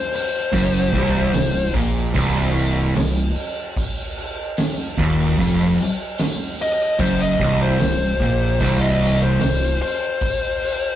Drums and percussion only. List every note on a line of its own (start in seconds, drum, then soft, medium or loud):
0.12 crash medium
0.53 kick loud
0.53 crash medium
0.93 kick loud
0.93 crash medium
1.33 snare loud
1.33 crash loud
1.74 kick loud
1.74 crash medium
2.14 kick loud
2.14 crash medium
2.55 crash medium
2.95 snare loud
2.95 crash medium
3.36 crash medium
3.77 kick loud
3.77 crash medium
4.16 crash medium
4.57 snare loud
4.57 crash medium
4.98 kick loud
4.98 crash medium
5.38 kick loud
5.38 crash medium
5.78 crash medium
6.18 snare loud
6.18 crash medium
6.58 crash medium
6.99 kick loud
6.99 crash medium
7.39 kick loud
7.39 crash medium
7.79 snare loud
7.79 crash medium
8.20 kick loud
8.20 crash medium
8.60 kick loud
8.60 crash medium
9.00 crash medium
9.40 snare loud
9.40 crash loud
9.81 crash medium
10.21 kick loud
10.21 crash medium
10.62 crash medium